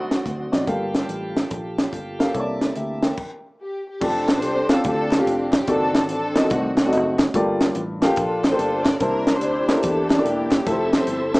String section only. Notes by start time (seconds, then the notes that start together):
Already playing: A3 C4 F#4
3.61 G4
3.88 G4
4.03 C4 D4 A4
4.38 G4 A4 C5
4.71 A4
4.86 C4 D4 A4
5.19 C4 D4 G4
5.52 G4
5.68 C4 D4 A4
6.09 C4 D4 A4
6.51 A3 C4 F#4
6.77 A3 C4 F#4
8.02 G4
8.17 D4 F4 A4
8.51 F4 A4 C5
8.85 D5
9.01 D4 E4 A#4
9.35 E4 G4 C5
9.68 A#4
9.84 D4 E4 A4
10.25 A#3 E4 G4
10.66 C4 E4 A4
11.00 E4 A4 C5
11.34 A4